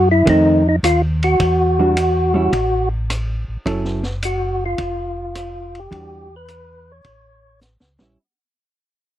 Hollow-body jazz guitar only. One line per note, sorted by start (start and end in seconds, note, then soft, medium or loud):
0.26 0.61 D#3 soft
0.26 0.62 A3 soft
0.26 0.62 C4 medium
1.79 1.95 E3 medium
1.79 1.95 G3 medium
1.79 1.96 D4 medium
1.79 1.96 F#4 medium
2.34 2.51 G3 medium
2.34 2.51 C#4 medium
2.34 2.51 E4 medium
3.66 4.01 F#3 medium
3.66 4.01 C#4 medium
3.66 4.01 E4 medium
3.66 4.02 A4 medium
5.91 6.27 E3 medium
5.91 6.27 G3 medium
5.91 6.27 D4 medium
5.91 6.28 F#4 medium
8.01 8.17 G3 medium
8.01 8.17 C#4 medium
8.01 8.18 E4 medium